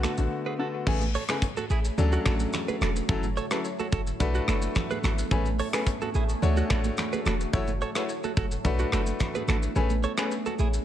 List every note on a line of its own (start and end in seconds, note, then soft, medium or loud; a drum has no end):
0.00 0.14 D3 medium
0.00 0.14 A3 medium
0.00 0.14 B3 medium
0.00 0.15 F#4 loud
0.00 0.12 A4 medium
0.00 cross-stick medium
0.00 shaker medium
0.04 0.12 F#4 medium
0.04 finger snap medium
0.04 high conga medium
0.17 0.27 A1 medium
0.17 0.56 D3 medium
0.17 0.56 A3 medium
0.17 0.56 B3 medium
0.17 0.56 F#4 medium
0.17 high conga medium
0.17 shaker medium
0.46 0.54 G#4 medium
0.46 0.53 B4 medium
0.59 0.85 D3 medium
0.59 0.85 A3 medium
0.59 0.85 B3 medium
0.59 0.85 F#4 medium
0.59 0.68 F#4 medium
0.59 0.67 A4 medium
0.87 1.17 A1 loud
0.87 1.01 C#3 medium
0.87 3.07 A3 medium
0.87 1.02 A3 medium
0.87 1.02 B3 medium
0.87 1.97 C#4 medium
0.87 1.97 G#4 medium
0.87 1.02 G#4 loud
0.87 kick loud
0.87 crash loud
0.87 low conga medium
1.01 high conga medium
1.01 shaker medium
1.15 1.23 A4 medium
1.15 1.23 C#5 medium
1.15 open hi-hat medium
1.15 shaker medium
1.29 1.43 C#3 medium
1.29 1.43 A3 medium
1.29 1.43 B3 medium
1.29 1.43 G#4 medium
1.29 1.37 G#4 medium
1.29 1.36 B4 medium
1.29 finger snap medium
1.29 cross-stick loud
1.29 shaker loud
1.42 kick medium
1.42 hi-hat pedal medium
1.42 shaker medium
1.57 1.65 F#4 medium
1.57 1.64 A4 medium
1.57 high conga medium
1.57 shaker medium
1.70 1.90 A1 loud
1.70 1.79 E4 medium
1.70 1.78 G#4 medium
1.70 shaker medium
1.85 shaker medium
1.98 2.18 D2 loud
1.98 3.08 D3 medium
1.98 3.00 F#3 loud
1.98 3.00 C#4 medium
1.98 3.01 D4 medium
1.98 3.08 F#4 medium
1.98 3.01 A4 loud
1.98 4.18 C#5 medium
1.98 low conga medium
1.98 shaker medium
2.12 2.20 D4 medium
2.12 2.20 F#4 medium
2.12 shaker medium
2.26 2.46 A1 medium
2.26 2.34 F#4 medium
2.26 2.34 A4 medium
2.26 finger snap medium
2.26 kick medium
2.26 cross-stick medium
2.26 high conga medium
2.26 shaker medium
2.40 high conga medium
2.40 shaker medium
2.53 finger snap medium
2.53 cross-stick medium
2.53 low conga medium
2.53 shaker medium
2.68 2.76 G#4 medium
2.68 2.75 B4 medium
2.68 high conga medium
2.68 shaker medium
2.81 3.01 E1 medium
2.81 2.90 F#4 medium
2.81 2.89 A4 medium
2.81 finger snap medium
2.81 cross-stick medium
2.81 high conga medium
2.81 low conga medium
2.81 shaker medium
2.96 shaker loud
3.09 3.39 F#1 loud
3.09 3.24 F#3 loud
3.09 4.19 F#3 medium
3.09 3.24 C#4 medium
3.09 4.19 E4 medium
3.09 3.24 E4 medium
3.09 4.19 A4 medium
3.09 3.24 A4 loud
3.09 kick loud
3.09 low conga medium
3.09 shaker medium
3.23 high conga medium
3.23 shaker medium
3.37 3.45 A4 medium
3.37 3.45 C#5 medium
3.37 shaker medium
3.51 3.65 F#3 medium
3.51 3.65 C#4 medium
3.51 3.65 E4 medium
3.51 3.59 G#4 medium
3.51 3.65 A4 medium
3.51 3.59 B4 medium
3.51 finger snap medium
3.51 cross-stick loud
3.51 shaker loud
3.64 shaker medium
3.79 3.87 F#4 medium
3.79 3.87 A4 medium
3.79 high conga medium
3.79 shaker medium
3.92 4.12 F#1 loud
3.92 4.01 F#4 medium
3.92 4.00 A4 medium
3.92 kick loud
3.92 shaker medium
4.07 shaker medium
4.20 4.40 B1 loud
4.20 5.23 A3 loud
4.20 7.50 A3 medium
4.20 5.30 B3 medium
4.20 5.23 D4 medium
4.20 5.30 D4 medium
4.20 5.23 F#4 medium
4.20 5.23 B4 loud
4.20 kick loud
4.20 low conga medium
4.20 shaker medium
4.35 4.43 D4 medium
4.35 4.42 F#4 medium
4.35 shaker medium
4.48 4.68 F#1 medium
4.48 4.57 F#4 medium
4.48 4.56 A4 medium
4.48 finger snap medium
4.48 cross-stick medium
4.48 high conga medium
4.48 shaker medium
4.62 high conga medium
4.62 shaker loud
4.75 finger snap medium
4.75 kick medium
4.75 cross-stick medium
4.75 low conga medium
4.75 shaker medium
4.90 4.98 G#4 medium
4.90 4.98 B4 medium
4.90 high conga medium
4.90 shaker medium
5.04 5.23 G#1 loud
5.04 5.12 F#4 medium
5.04 5.12 A4 medium
5.04 finger snap medium
5.04 cross-stick medium
5.04 high conga medium
5.04 low conga medium
5.04 shaker medium
5.18 shaker loud
5.31 5.61 A1 loud
5.31 5.46 A3 loud
5.31 5.46 C#4 medium
5.31 6.41 C#4 medium
5.31 6.41 G#4 medium
5.31 5.46 G#4 medium
5.31 5.46 B4 loud
5.31 kick loud
5.31 low conga medium
5.31 shaker medium
5.45 high conga medium
5.45 shaker medium
5.59 5.68 A4 medium
5.59 5.67 C#5 medium
5.59 open hi-hat medium
5.59 shaker medium
5.73 5.87 A3 medium
5.73 5.87 C#4 medium
5.73 5.87 G#4 medium
5.73 5.82 G#4 medium
5.73 5.87 B4 medium
5.73 5.81 B4 medium
5.73 finger snap medium
5.73 cross-stick loud
5.73 shaker loud
5.87 kick loud
5.87 hi-hat pedal medium
5.87 shaker medium
6.01 6.09 F#4 medium
6.01 6.09 A4 medium
6.01 high conga medium
6.01 shaker medium
6.14 6.34 A1 medium
6.14 6.23 E4 medium
6.14 6.23 G#4 medium
6.14 shaker medium
6.29 shaker medium
6.42 6.62 D2 loud
6.42 7.52 D3 medium
6.42 7.45 A3 loud
6.42 7.45 D4 medium
6.42 7.52 F#4 medium
6.42 7.45 F#4 medium
6.42 8.62 C#5 medium
6.42 7.45 C#5 loud
6.42 low conga medium
6.42 shaker medium
6.57 6.65 D4 medium
6.57 6.64 F#4 medium
6.57 shaker medium
6.70 6.90 A1 medium
6.70 6.79 F#4 medium
6.70 6.78 A4 medium
6.70 finger snap medium
6.70 kick medium
6.70 cross-stick loud
6.70 high conga medium
6.70 shaker medium
6.84 high conga medium
6.84 shaker loud
6.97 finger snap medium
6.97 cross-stick medium
6.97 low conga medium
6.97 shaker medium
7.13 7.20 G#4 medium
7.13 7.20 B4 medium
7.13 high conga medium
7.13 shaker medium
7.26 7.46 E1 medium
7.26 7.34 F#4 medium
7.26 7.34 A4 medium
7.26 finger snap medium
7.26 cross-stick medium
7.26 high conga medium
7.26 low conga medium
7.26 shaker medium
7.41 shaker loud
7.53 7.84 F#1 loud
7.53 8.64 F#3 medium
7.53 7.68 A3 medium
7.53 8.63 E4 medium
7.53 7.68 E4 medium
7.53 7.68 F#4 medium
7.53 8.64 A4 medium
7.53 7.68 C#5 loud
7.53 kick loud
7.53 low conga medium
7.53 shaker medium
7.67 high conga medium
7.67 shaker medium
7.81 7.90 A4 medium
7.81 7.89 C#5 medium
7.81 high conga soft
7.81 shaker medium
7.95 8.09 A3 medium
7.95 8.09 E4 medium
7.95 8.10 F#4 medium
7.95 8.04 G#4 medium
7.95 8.03 B4 medium
7.95 8.10 C#5 medium
7.95 finger snap medium
7.95 cross-stick loud
7.95 shaker loud
8.09 shaker medium
8.24 8.32 F#4 medium
8.24 8.31 A4 medium
8.24 high conga medium
8.24 shaker medium
8.37 8.57 F#1 medium
8.37 8.46 F#4 medium
8.37 8.45 A4 medium
8.37 kick loud
8.37 shaker medium
8.51 shaker medium
8.64 8.85 B1 loud
8.64 9.67 A3 loud
8.64 10.85 A3 medium
8.64 9.75 B3 medium
8.64 9.75 D4 medium
8.64 9.67 D4 medium
8.64 9.67 F#4 medium
8.64 9.67 B4 loud
8.64 kick medium
8.64 low conga medium
8.64 shaker medium
8.79 8.87 D4 medium
8.79 8.87 F#4 medium
8.79 shaker medium
8.92 9.12 F#1 medium
8.92 9.01 F#4 medium
8.92 9.00 A4 medium
8.92 finger snap medium
8.92 cross-stick medium
8.92 high conga medium
8.92 shaker medium
9.06 high conga medium
9.06 shaker loud
9.20 finger snap medium
9.20 kick medium
9.20 cross-stick medium
9.20 low conga medium
9.20 shaker medium
9.35 9.43 G#4 medium
9.35 9.42 B4 medium
9.35 high conga medium
9.35 shaker medium
9.48 9.68 G#1 loud
9.48 9.57 F#4 medium
9.48 9.56 A4 medium
9.48 finger snap medium
9.48 cross-stick medium
9.48 high conga medium
9.48 low conga medium
9.48 shaker medium
9.63 shaker medium
9.75 10.06 A1 loud
9.75 9.90 A3 loud
9.75 9.90 C#4 medium
9.75 9.91 G#4 medium
9.75 10.85 G#4 medium
9.75 9.91 B4 loud
9.75 10.85 C#5 medium
9.75 low conga medium
9.75 shaker medium
9.90 high conga medium
9.90 shaker medium
10.03 10.12 A4 medium
10.03 10.11 C#5 medium
10.03 shaker medium
10.18 10.31 A3 medium
10.18 10.32 C#4 medium
10.18 10.32 G#4 medium
10.18 10.26 G#4 medium
10.18 10.25 B4 medium
10.18 10.32 B4 medium
10.18 finger snap medium
10.18 cross-stick loud
10.18 shaker medium
10.31 shaker medium
10.46 10.54 F#4 medium
10.46 10.53 A4 medium
10.46 high conga medium
10.46 shaker medium
10.59 10.79 A1 medium
10.59 10.68 E4 medium
10.59 10.67 G#4 medium
10.59 shaker medium
10.73 shaker medium